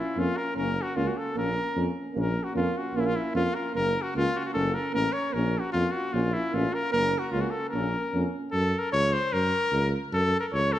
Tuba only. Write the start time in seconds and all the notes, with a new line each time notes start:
0.16 F2
0.56 F#1
0.96 C#2
1.35 A#1
1.76 F2
2.16 A#1
2.55 F2
2.94 A#1
3.35 F2
3.75 F#1
4.15 C#2
4.55 F#1
4.95 A1
5.35 A#1
5.74 F2
6.13 A#1
6.53 A1
6.93 F#1
7.32 C#2
7.73 A#1
8.14 F2
8.53 F#2
8.93 C#2
9.33 F#2
9.72 C#2
10.12 F#2
10.53 C#2